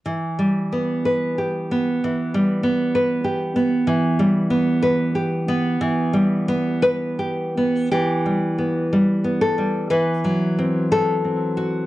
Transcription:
\new Staff \with { instrumentName = "Nylon-string guitar" } { \time 4/4 \key e \minor \tempo 4 = 60 << { r1 | r2. b'4 | g'4. a'8 b'4 a'4 | } \\ { \tuplet 3/2 { e8 g8 b8 b'8 g'8 b8 e8 g8 b8 b'8 g'8 b8 } | \tuplet 3/2 { e8 g8 b8 b'8 g'8 b8 e8 g8 b8 b'8 g'8 b8 } | \tuplet 3/2 { e8 g8 b8 g8 b8 g8 e8 fis8 c'8 fis8 c'8 fis'8 } | } >> }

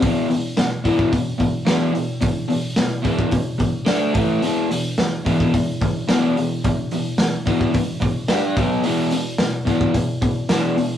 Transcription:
<<
  \new Staff \with { instrumentName = "Overdriven electric guitar" } { \clef bass \time 4/4 \key e \minor \tempo 4 = 109 <e, b, e>8 <e, b,>8 <e, b,>8 <e, b, e>8 <e, b,>8 <e, b,>8 <e, b, e>8 <e, b,>8 | <e, b,>8 <e, b,>8 <e, b,>8 <e, b, e>8 <e, b,>8 <e, b,>8 <d a d'>8 <a, e a>8 | <e, b, e>8 <e, b,>8 <e, b,>8 <e, b, e>8 <e, b,>8 <e, b,>8 <e, b, e>8 <e, b,>8 | <e, b,>8 <e, b,>8 <e, b,>8 <e, b, e>8 <e, b,>8 <e, b,>8 <g d' g'>8 <b, fis b>8 |
<e, b, e>8 <e, b,>8 <e, b,>8 <e, b, e>8 <e, b,>8 <e, b,>8 <e, b, e>8 <e, b,>8 | }
  \new DrumStaff \with { instrumentName = "Drums" } \drummode { \time 4/4 <hho bd>8 hho8 <hho sn>8 <hho bd>16 bd16 <hho bd>8 <hho bd>8 <hho sn>8 hho8 | <hho bd>8 hho8 <hho sn>8 <hho bd>16 bd16 <hho bd>8 <hho bd>8 <hho sn>8 <hho bd>8 | hho8 hho8 <hho sn>8 <hho bd>16 bd16 <hho bd>8 <hho bd>8 <hho sn>8 hho8 | <hho bd>8 hho8 <hho sn>8 <hho bd>16 bd16 <hho bd>8 <hho bd>8 <hho sn>8 <hho bd>8 |
hho8 hho8 <hho sn>8 <hho bd>16 bd16 <hho bd>8 <hho bd>8 <hho sn>8 hho8 | }
>>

